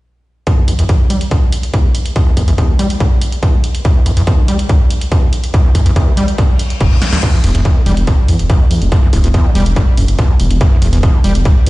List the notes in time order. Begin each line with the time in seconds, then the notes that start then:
0.47 E2, kick, closed hi-hat
0.58 E2
0.68 E2, closed hi-hat
0.79 E2, closed hi-hat
0.89 E2, kick, closed hi-hat
1.00 D2
1.10 G3, closed hi-hat
1.21 closed hi-hat
1.31 D2, kick, closed hi-hat
1.52 closed hi-hat
1.63 closed hi-hat
1.74 E2, kick, closed hi-hat
1.84 D2
1.95 closed hi-hat
2.06 closed hi-hat
2.16 E2, kick, closed hi-hat
2.27 E2
2.37 E2, kick, closed hi-hat
2.48 E2, closed hi-hat
2.58 E2, kick, closed hi-hat
2.69 D2
2.79 G3, closed hi-hat
2.90 closed hi-hat
3.00 D2, kick, closed hi-hat
3.21 closed hi-hat
3.32 closed hi-hat
3.43 E2, kick, closed hi-hat
3.54 D2
3.64 closed hi-hat
3.75 closed hi-hat
3.85 E2, kick, closed hi-hat
3.96 E2
4.06 E2, closed hi-hat
4.17 E2, closed hi-hat
4.27 E2, kick, closed hi-hat
4.38 D2
4.48 G3, closed hi-hat
4.59 closed hi-hat
4.69 D2, kick, closed hi-hat
4.90 closed hi-hat
5.01 closed hi-hat
5.12 E2, kick, closed hi-hat
5.23 D2
5.33 closed hi-hat
5.44 closed hi-hat
5.54 E2, kick, closed hi-hat
5.65 E2
5.75 E2, kick, closed hi-hat
5.86 E2, closed hi-hat
5.96 E2, kick, closed hi-hat
6.07 D2
6.17 G3, closed hi-hat
6.28 closed hi-hat
6.38 D2, kick, closed hi-hat, reverse cymbal
6.59 closed hi-hat
6.70 closed hi-hat
6.80 E1, kick, closed hi-hat
6.92 E2
7.02 snare, closed hi-hat
7.13 D2, snare, closed hi-hat
7.23 E2, kick, closed hi-hat, crash
7.34 E2
7.44 E1 E2, open hi-hat
7.55 E1 E2, closed hi-hat
7.65 E2, kick, closed hi-hat
7.76 D2
7.86 E1 G3, open hi-hat
7.97 E1, closed hi-hat
8.07 D2, kick, closed hi-hat
8.28 E2, open hi-hat
8.39 E1, closed hi-hat
8.50 E2, kick, closed hi-hat
8.61 D2
8.71 E2, open hi-hat
8.82 E1, closed hi-hat
8.92 E2, kick, closed hi-hat
9.03 E2
9.13 D1 E2, kick, open hi-hat
9.24 E1 E2, closed hi-hat
9.34 E2, kick, closed hi-hat
9.45 D2
9.55 E1 G3, open hi-hat
9.66 E1, closed hi-hat
9.76 D2, kick, closed hi-hat
9.97 F#1, open hi-hat
10.08 F#1, closed hi-hat
10.19 E2, kick, closed hi-hat
10.29 D2
10.40 E1, open hi-hat
10.51 E1, closed hi-hat
10.61 E2, kick, closed hi-hat
10.72 E2
10.82 E1 E2, open hi-hat
10.93 E1 E2, closed hi-hat
11.03 E2, kick, closed hi-hat
11.14 D2
11.24 E1 G3, open hi-hat
11.35 E1, closed hi-hat
11.45 D2, kick, closed hi-hat
11.67 E2, open hi-hat